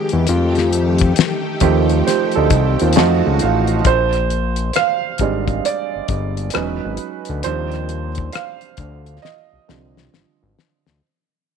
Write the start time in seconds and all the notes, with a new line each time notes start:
Already playing: D#3 G#3 G4
0.09 closed hi-hat
0.13 E2
0.27 F2 D#3 A3, closed hi-hat
0.55 snare, closed hi-hat
0.73 closed hi-hat
0.98 kick, closed hi-hat
1.16 snare, closed hi-hat
1.60 D#2 F3 A3 C4 D#4 G4, kick, closed hi-hat
1.90 closed hi-hat
2.07 G4 C5, snare, closed hi-hat
2.32 A4, closed hi-hat
2.36 D2 D#4
2.50 C2, kick, closed hi-hat
2.79 D#2 C4 F4, closed hi-hat
2.93 F3 A3 F#4, closed hi-hat
2.97 F2 C4 D#4 F#4 A5, snare
3.27 C#2
3.39 A1 F5, closed hi-hat
3.67 closed hi-hat
3.85 A#1 C5, kick, closed hi-hat
4.13 cross-stick, closed hi-hat
4.30 closed hi-hat
4.56 closed hi-hat
4.73 F5, cross-stick, closed hi-hat
5.18 G#1 G3 G#3 C4 D4, kick, closed hi-hat
5.48 kick, closed hi-hat
5.65 D5, closed hi-hat
5.96 G1
6.08 G1, kick, closed hi-hat
6.37 closed hi-hat
6.50 F#3 B4, closed hi-hat
6.54 E1 G#3 C#4 D#4, cross-stick
6.85 G#1
6.97 closed hi-hat
7.25 closed hi-hat
7.29 D2
7.43 D#2 F3 G3 C4 D4 C5, closed hi-hat
7.72 cross-stick, closed hi-hat
7.89 closed hi-hat
8.15 kick, closed hi-hat
8.32 F5, cross-stick, closed hi-hat
8.61 closed hi-hat
8.77 D2, kick, closed hi-hat
9.06 closed hi-hat
9.22 D#5, snare
9.53 C2
9.68 C2 D3 F3 G3 C4, snare
9.97 snare
10.14 G#1, snare
10.43 G#1
10.59 snare
10.87 D2, snare